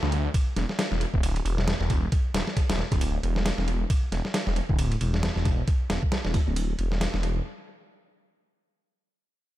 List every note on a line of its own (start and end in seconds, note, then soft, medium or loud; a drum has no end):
0.03 0.29 D2 medium
0.03 snare medium
0.12 ride medium
0.34 kick loud
0.34 ride medium
0.56 0.65 E1 loud
0.56 snare soft
0.56 ride medium
0.69 snare soft
0.79 snare loud
0.79 ride medium
0.91 1.05 E1 medium
0.91 snare soft
1.01 ride medium
1.14 1.40 D1 loud
1.14 kick medium
1.23 ride medium
1.36 ride soft
1.45 1.73 E1 loud
1.45 ride medium
1.58 snare medium
1.68 snare loud
1.68 ride medium
1.80 2.07 E1 loud
1.80 snare soft
1.90 kick medium
1.90 ride medium
2.12 kick loud
2.12 ride medium
2.34 2.42 E1 loud
2.34 snare loud
2.34 ride medium
2.47 snare medium
2.57 kick medium
2.57 ride medium
2.69 2.82 E1 medium
2.69 snare loud
2.69 ride medium
2.79 snare medium
2.92 3.18 D1 medium
2.92 kick medium
2.92 ride medium
3.01 ride medium
3.23 3.51 E1 loud
3.23 ride medium
3.36 snare medium
3.46 snare loud
3.46 ride medium
3.58 3.84 E1 medium
3.58 snare soft
3.68 ride medium
3.90 kick loud
3.90 ride medium
4.12 4.20 E1 loud
4.12 snare soft
4.12 ride medium
4.25 snare soft
4.34 snare loud
4.34 ride medium
4.47 4.60 E1 medium
4.47 snare soft
4.56 ride medium
4.69 4.96 D1 loud
4.69 kick medium
4.79 ride medium
4.92 ride soft
5.01 5.29 E1 medium
5.01 ride medium
5.14 snare medium
5.23 snare loud
5.23 ride medium
5.36 5.62 E1 medium
5.36 snare soft
5.45 kick medium
5.45 ride medium
5.68 kick loud
5.68 ride medium
5.90 5.98 E1 medium
5.90 snare loud
5.90 ride medium
6.03 kick medium
6.12 snare loud
6.12 ride medium
6.25 6.38 E1 medium
6.25 snare medium
6.34 kick medium
6.34 ride medium
6.47 6.73 D1 medium
6.56 ride medium
6.79 7.07 E1 loud
6.79 ride medium
6.92 snare medium
7.01 snare loud
7.01 ride medium
7.14 7.40 E1 medium
7.14 snare soft
7.23 ride medium